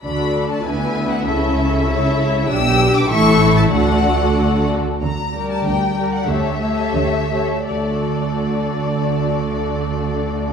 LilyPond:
<<
  \new Staff \with { instrumentName = "Violin section" } { \time 2/4 \key d \major \tempo 4 = 94 b''8. a''16 gis''8. fis''16 | e''2 | e'''8. d'''16 cis'''8. a''16 | fis''4. r8 |
bes''8. a''16 g''8. fis''16 | e''2 | d''2~ | d''2 | }
  \new Staff \with { instrumentName = "Violin section" } { \time 2/4 \key d \major << { d''4 e''4~ | e''4 e''4 | g''4 e''4 | d''4. r8 |
r8 d''4 d''8 | cis''8 cis''4 cis''8 | d''2~ | d''2 | } \\ { a'4 b'4 | a'4 cis''4 | g'4 a'4 | a'4. r8 |
r8 bes'4 bes'8 | a'8 a'4 a'8 | a'2~ | a'2 | } >> }
  \new Staff \with { instrumentName = "Viola section" } { \time 2/4 \key d \major << { fis'4 e'4~ | e'4 a'4 | d'4 e'4 | fis'4. r8 |
r8 g'4 g'8 | g'8 g'4 g'8 | fis'2~ | fis'2 | } \\ { d'4 b4 | cis'4 e'4 | d'4 a4 | a4. r8 |
r8 g4 g8 | a8 a4 a8 | a2~ | a2 | } >> }
  \new Staff \with { instrumentName = "Cello section" } { \clef bass \time 2/4 \key d \major d4 d4 | cis2 | b,4 a,4 | d4. r8 |
d4 d4 | d4 d4 | d2~ | d2 | }
  \new Staff \with { instrumentName = "Double bass section" } { \clef bass \time 2/4 \key d \major d,4 d,4 | cis,2 | b,,4 a,,4 | d,4. r8 |
d,4 d,4 | d,4 d,4 | d,2~ | d,2 | }
>>